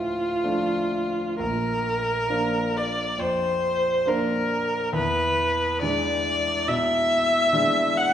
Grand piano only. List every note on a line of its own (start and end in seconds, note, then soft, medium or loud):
0.00 0.41 A2 soft
0.00 0.44 F3 soft
0.00 0.44 A3 soft
0.00 0.45 D4 soft
0.44 1.36 F3 soft
0.44 1.37 A3 soft
0.44 1.37 D4 soft
1.39 2.28 A#1 soft
2.29 3.15 F3 soft
2.29 3.15 A#3 soft
2.29 3.15 D4 soft
3.18 4.04 F2 soft
4.05 4.90 F3 soft
4.05 4.90 A#3 soft
4.05 4.91 D4 soft
4.93 5.79 E2 medium
5.82 6.63 E3 soft
5.82 6.63 G#3 soft
5.82 6.63 D4 soft
6.68 7.50 B2 medium
7.53 8.13 E3 soft
7.53 8.13 G#3 soft
7.53 8.13 D4 soft